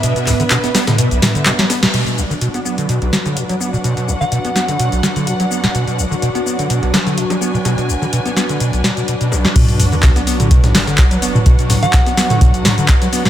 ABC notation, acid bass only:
X:1
M:4/4
L:1/16
Q:"Swing 16ths" 1/4=126
K:Bdor
V:1 name="Acid bass" clef=bass
B,, B,, B,,, D, B,, B, B, D, B,, B,,, D, D, B,, F, B, B,, | B,, B,, B,,, D, B,, B, B, D, B,, B,,, D, D, B,, F, B, B,, | B,, B,, B,,, D, B,, B, B, D, B,, B,,, D, D, B,, F, B, B,, | B,, B,, B,,, D, B,, B, B, D, B,, B,,, D, D, B,, F, B, B,, |
B,, B,, B,,, D, B,, B, B, D, B,, B,,, B,, B,, B,, B,, B,,, B, | B,, B,, B,,, D, B,, B, B, D, B,, B,,, D, D, B,, F, B, B,, | B,, B,, B,,, D, B,, B, B, D, B,, B,,, D, D, B,, F, B, B,, |]